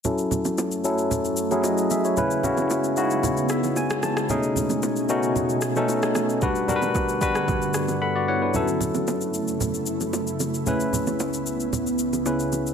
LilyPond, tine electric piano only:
\new Staff \with { instrumentName = "Tine electric piano" } { \time 4/4 \key fis \dorian \tempo 4 = 113 << { r2. <fis' dis''>8 <gis' e''>16 <e' cis''>16~ | <e' cis''>16 r2 r16 e''8 gis''8 a''8 | r1 | r2. <a' fis'' b''>16 <fis' d''>16 <e' cis'' fis''>16 <d' b'>16~ |
<d' b'>16 r2. r8. | r1 | } \\ { <fis cis' e' a'>4~ <fis cis' e' a'>16 r16 <fis cis' e' a'>4 r16 <fis cis' e' gis'>4 r16 | <cis cis' e' b'>8 <cis cis' e' fis'>8. r16 <cis cis' dis' e' fis'>4. r4 | <b, a cis' dis' gis'>4~ <b, a cis' dis' gis'>16 r16 <b, a cis' dis' fis'>4 r16 <b, a cis' dis' a'>4 r16 | <g d' fis' b'>8 <g d' fis' ais' b'>8. r16 <g d' fis' b'>4. r4 |
<fis cis' e' a'>1 | <cis cis' e' b'>2. <cis cis' e' b'>4 | } >> }